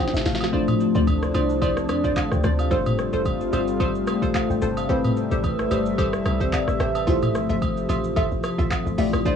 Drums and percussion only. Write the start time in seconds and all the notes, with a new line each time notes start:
0.07 snare
0.14 snare, shaker
0.25 snare, open hi-hat, shaker
0.35 snare
0.41 snare, high agogo, shaker
0.53 kick, shaker
0.68 mid tom, high agogo, shaker
0.80 shaker
0.95 shaker
1.07 kick, high agogo, shaker
1.22 cross-stick, shaker
1.34 high agogo, shaker
1.49 shaker
1.62 kick, high agogo, shaker
1.77 cross-stick, shaker
1.89 cross-stick, high agogo, shaker
2.04 kick, shaker
2.16 kick, clap, high agogo, low woodblock, shaker
2.31 cross-stick, shaker
2.44 cross-stick, shaker
2.59 high agogo, shaker
2.71 kick, shaker
2.86 mid tom, high agogo, shaker
2.99 cross-stick, shaker
3.13 shaker
3.26 kick, high agogo, shaker
3.41 shaker
3.53 high agogo, shaker
3.68 shaker
3.80 kick, high agogo, shaker
3.95 shaker
4.07 cross-stick, high agogo, shaker
4.22 kick, shaker
4.35 kick, clap, high agogo, low woodblock, shaker
4.50 shaker
4.62 shaker
4.77 high agogo, shaker
4.89 kick, shaker
5.04 mid tom, high agogo, shaker
5.17 shaker
5.31 shaker
5.44 kick, high agogo, shaker
5.59 cross-stick, shaker
5.71 high agogo, shaker
5.86 shaker
5.98 kick, high agogo, shaker
6.13 cross-stick, shaker
6.25 cross-stick, high agogo, shaker
6.40 kick, shaker
6.53 kick, clap, high agogo, low woodblock, shaker
6.68 cross-stick, shaker
6.80 cross-stick, shaker
6.95 high agogo, shaker
7.08 kick, shaker
7.22 mid tom, high agogo, shaker
7.35 cross-stick, shaker
7.50 shaker
7.62 kick, high agogo, shaker
7.77 shaker
7.89 high agogo, shaker
8.04 shaker
8.16 kick, high agogo, shaker
8.31 shaker
8.44 cross-stick, high agogo, shaker
8.59 kick, shaker
8.71 kick, clap, high agogo, low woodblock, shaker
8.87 shaker
8.98 open hi-hat, shaker
9.13 cross-stick, high agogo, shaker
9.26 kick, shaker